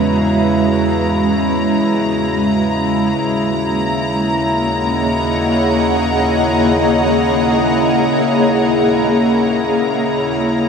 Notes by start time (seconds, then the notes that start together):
Already playing: E2 C#3 G#3 C#4 E4 F#4 B4 E5 A#5
3.19 D#2 A#3
3.63 C#5
3.71 D#5
3.78 G#4 F#5